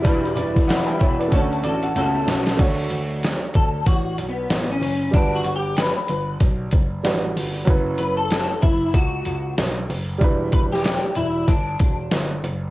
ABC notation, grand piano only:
X:1
M:4/4
L:1/16
Q:"Swing 16ths" 1/4=94
K:D
V:1 name="Grand piano" clef=bass
E,,,2 E,,,3 z E,,,2 D,,2 A,,,2 C,,2 B,,,2 | D,,2 D,,3 z D,,2 A,,,2 B,,,2 A,,,2 F,,,2 | G,,,2 G,,,3 z G,,,2 B,,,2 F,,,2 A,,,2 G,,,2 | F,,,2 F,,,3 z F,,,2 C,,2 C,,2 B,,,2 F,,,2 |
E,,,2 E,,,3 z E,,,2 G,,,2 E,,,2 G,,,2 F,,,2 |]